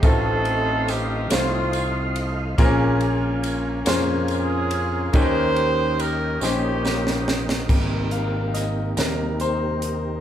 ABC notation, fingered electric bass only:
X:1
M:6/8
L:1/8
Q:3/8=47
K:Ab
V:1 name="Fingered electric bass" clef=bass
=A,,,3 C,,3 | B,,,3 F,,3 | E,,3 B,,,3 | A,,,3 E,,3 |]